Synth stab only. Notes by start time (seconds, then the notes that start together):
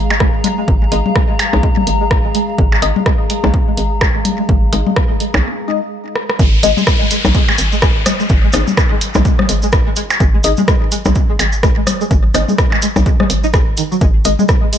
0.92 G#3 D#4 D#5
2.82 G#3 D#4 D#5
4.73 G#3 D#4 D#5
5.68 G#3 D#4 D#5
6.63 G#3 D#4 D#5
8.54 G#3 D#4 D#5
10.44 G#3 D#4 D#5
12.35 G#3 D#4 D#5
14.25 G#3 D#4 D#5